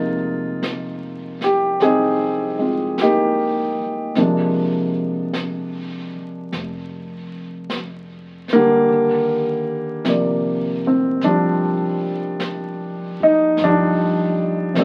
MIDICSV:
0, 0, Header, 1, 5, 480
1, 0, Start_track
1, 0, Key_signature, -3, "major"
1, 0, Tempo, 1178782
1, 1693, Time_signature, 4, 2, 24, 8
1, 6043, End_track
2, 0, Start_track
2, 0, Title_t, "Grand piano"
2, 0, Program_c, 0, 0
2, 0, Control_c, 0, 64, 127
2, 0, Note_on_c, 0, 48, 47
2, 0, Note_on_c, 0, 53, 42
2, 0, Note_on_c, 0, 56, 54
2, 0, Note_on_c, 0, 58, 45
2, 0, Note_on_c, 0, 63, 57
2, 0, Note_on_c, 0, 65, 92
2, 575, Note_off_c, 0, 56, 0
2, 586, Note_on_c, 0, 67, 70
2, 618, Note_off_c, 0, 65, 0
2, 726, Note_off_c, 0, 67, 0
2, 742, Note_on_c, 0, 68, 80
2, 744, Note_off_c, 0, 63, 0
2, 746, Note_on_c, 0, 60, 55
2, 750, Note_on_c, 0, 63, 56
2, 1054, Note_off_c, 0, 60, 0
2, 1054, Note_on_c, 0, 56, 38
2, 1060, Note_on_c, 0, 60, 34
2, 1065, Note_on_c, 0, 65, 41
2, 1224, Note_off_c, 0, 58, 0
2, 1224, Note_off_c, 0, 63, 0
2, 1226, Note_on_c, 0, 67, 75
2, 1230, Note_on_c, 0, 58, 54
2, 1230, Note_on_c, 0, 63, 53
2, 1232, Note_off_c, 0, 68, 0
2, 1683, Note_off_c, 0, 67, 0
2, 1685, Note_off_c, 0, 58, 0
2, 1685, Note_off_c, 0, 63, 0
2, 1689, Note_off_c, 0, 48, 0
2, 1690, Note_off_c, 0, 56, 0
2, 1692, Note_off_c, 0, 53, 0
2, 1693, Note_off_c, 0, 60, 0
2, 1695, Note_on_c, 0, 48, 46
2, 1696, Note_off_c, 0, 65, 0
2, 1698, Control_c, 0, 64, 0
2, 1698, Note_on_c, 0, 58, 43
2, 1701, Note_on_c, 0, 53, 41
2, 1702, Note_on_c, 0, 62, 52
2, 1711, Note_off_c, 0, 53, 0
2, 1717, Note_on_c, 0, 53, 48
2, 1717, Note_on_c, 0, 56, 42
2, 1770, Control_c, 0, 64, 127
2, 2648, Note_off_c, 0, 53, 0
2, 2649, Note_off_c, 0, 56, 0
2, 3466, Note_off_c, 0, 58, 0
2, 3473, Note_on_c, 0, 58, 89
2, 3480, Note_on_c, 0, 50, 60
2, 3483, Note_on_c, 0, 55, 63
2, 3614, Note_off_c, 0, 48, 0
2, 3617, Note_off_c, 0, 62, 0
2, 3619, Control_c, 0, 64, 0
2, 3694, Control_c, 0, 64, 127
2, 4083, Note_off_c, 0, 58, 0
2, 4090, Note_on_c, 0, 48, 44
2, 4095, Note_on_c, 0, 53, 36
2, 4105, Note_on_c, 0, 58, 41
2, 4109, Note_on_c, 0, 74, 47
2, 4413, Note_off_c, 0, 50, 0
2, 4414, Note_off_c, 0, 55, 0
2, 4427, Note_on_c, 0, 60, 63
2, 4578, Note_on_c, 0, 62, 72
2, 4579, Note_off_c, 0, 53, 0
2, 4581, Note_off_c, 0, 60, 0
2, 4584, Note_on_c, 0, 55, 53
2, 4585, Note_on_c, 0, 53, 55
2, 5366, Note_off_c, 0, 62, 0
2, 5388, Note_on_c, 0, 63, 87
2, 5522, Note_off_c, 0, 55, 0
2, 5523, Note_off_c, 0, 53, 0
2, 5527, Note_off_c, 0, 63, 0
2, 5531, Note_off_c, 0, 48, 0
2, 5539, Note_off_c, 0, 58, 0
2, 5541, Note_off_c, 0, 74, 0
2, 5553, Note_on_c, 0, 62, 87
2, 5555, Note_on_c, 0, 53, 55
2, 5557, Note_on_c, 0, 55, 55
2, 6001, Note_on_c, 0, 48, 40
2, 6005, Note_off_c, 0, 53, 0
2, 6011, Note_on_c, 0, 53, 43
2, 6015, Note_on_c, 0, 58, 38
2, 6019, Note_off_c, 0, 55, 0
2, 6019, Note_on_c, 0, 74, 51
2, 6022, Note_off_c, 0, 53, 0
2, 6024, Note_on_c, 0, 60, 68
2, 6025, Note_on_c, 0, 55, 47
2, 6028, Note_on_c, 0, 53, 45
2, 6037, Note_off_c, 0, 62, 0
2, 6043, Note_off_c, 0, 48, 0
2, 6043, Note_off_c, 0, 53, 0
2, 6043, Note_off_c, 0, 55, 0
2, 6043, Note_off_c, 0, 58, 0
2, 6043, Note_off_c, 0, 60, 0
2, 6043, Note_off_c, 0, 74, 0
2, 6043, End_track
3, 0, Start_track
3, 0, Title_t, "Upright bass"
3, 0, Program_c, 1, 32
3, 0, Note_on_c, 1, 29, 73
3, 718, Note_off_c, 1, 29, 0
3, 737, Note_on_c, 1, 36, 65
3, 1525, Note_off_c, 1, 36, 0
3, 1695, Note_on_c, 1, 34, 65
3, 2484, Note_off_c, 1, 34, 0
3, 2658, Note_on_c, 1, 29, 73
3, 3599, Note_off_c, 1, 29, 0
3, 3618, Note_on_c, 1, 39, 69
3, 4405, Note_off_c, 1, 39, 0
3, 4422, Note_on_c, 1, 38, 65
3, 4563, Note_off_c, 1, 38, 0
3, 4573, Note_on_c, 1, 34, 66
3, 5363, Note_off_c, 1, 34, 0
3, 5376, Note_on_c, 1, 46, 63
3, 5520, Note_off_c, 1, 46, 0
3, 5530, Note_on_c, 1, 31, 75
3, 6043, Note_off_c, 1, 31, 0
3, 6043, End_track
4, 0, Start_track
4, 0, Title_t, "Muted upright bass strokes"
4, 1545, Note_on_c, 9, 29, 32
4, 1586, Note_off_c, 9, 29, 0
4, 2507, Note_on_c, 9, 29, 36
4, 2548, Note_off_c, 9, 29, 0
4, 6043, End_track
5, 0, Start_track
5, 0, Title_t, "Drums"
5, 255, Note_on_c, 9, 25, 29
5, 255, Note_on_c, 9, 38, 33
5, 255, Note_on_c, 9, 44, 48
5, 295, Note_off_c, 9, 38, 0
5, 295, Note_off_c, 9, 44, 0
5, 574, Note_on_c, 9, 38, 22
5, 614, Note_off_c, 9, 38, 0
5, 733, Note_off_c, 9, 25, 0
5, 733, Note_on_c, 9, 25, 36
5, 733, Note_on_c, 9, 38, 27
5, 774, Note_off_c, 9, 38, 0
5, 1212, Note_off_c, 9, 25, 0
5, 1212, Note_on_c, 9, 25, 27
5, 1212, Note_on_c, 9, 38, 34
5, 1212, Note_on_c, 9, 44, 44
5, 1253, Note_off_c, 9, 38, 0
5, 1253, Note_off_c, 9, 44, 0
5, 1691, Note_off_c, 9, 25, 0
5, 1691, Note_on_c, 9, 25, 29
5, 1691, Note_on_c, 9, 38, 22
5, 1732, Note_off_c, 9, 38, 0
5, 2172, Note_off_c, 9, 25, 0
5, 2172, Note_on_c, 9, 25, 28
5, 2172, Note_on_c, 9, 38, 34
5, 2172, Note_on_c, 9, 44, 43
5, 2213, Note_off_c, 9, 38, 0
5, 2213, Note_off_c, 9, 44, 0
5, 2657, Note_off_c, 9, 25, 0
5, 2657, Note_on_c, 9, 25, 30
5, 2657, Note_on_c, 9, 38, 26
5, 2697, Note_off_c, 9, 38, 0
5, 3134, Note_off_c, 9, 25, 0
5, 3134, Note_on_c, 9, 25, 26
5, 3134, Note_on_c, 9, 38, 34
5, 3134, Note_on_c, 9, 44, 41
5, 3175, Note_off_c, 9, 38, 0
5, 3175, Note_off_c, 9, 44, 0
5, 3453, Note_on_c, 9, 38, 23
5, 3494, Note_off_c, 9, 38, 0
5, 3612, Note_off_c, 9, 25, 0
5, 3612, Note_on_c, 9, 25, 29
5, 4091, Note_off_c, 9, 25, 0
5, 4091, Note_on_c, 9, 25, 29
5, 4091, Note_on_c, 9, 38, 35
5, 4091, Note_on_c, 9, 44, 41
5, 4132, Note_off_c, 9, 38, 0
5, 4132, Note_off_c, 9, 44, 0
5, 4566, Note_off_c, 9, 25, 0
5, 4566, Note_on_c, 9, 25, 31
5, 4566, Note_on_c, 9, 38, 25
5, 4607, Note_off_c, 9, 38, 0
5, 5048, Note_off_c, 9, 25, 0
5, 5048, Note_on_c, 9, 25, 26
5, 5048, Note_on_c, 9, 38, 40
5, 5048, Note_on_c, 9, 44, 47
5, 5089, Note_off_c, 9, 38, 0
5, 5089, Note_off_c, 9, 44, 0
5, 5525, Note_off_c, 9, 25, 0
5, 5525, Note_on_c, 9, 25, 31
5, 5525, Note_on_c, 9, 38, 24
5, 5566, Note_off_c, 9, 38, 0
5, 6008, Note_off_c, 9, 25, 0
5, 6008, Note_on_c, 9, 25, 25
5, 6008, Note_on_c, 9, 38, 36
5, 6008, Note_on_c, 9, 44, 39
5, 6043, Note_off_c, 9, 25, 0
5, 6043, Note_off_c, 9, 38, 0
5, 6043, Note_off_c, 9, 44, 0
5, 6043, End_track
0, 0, End_of_file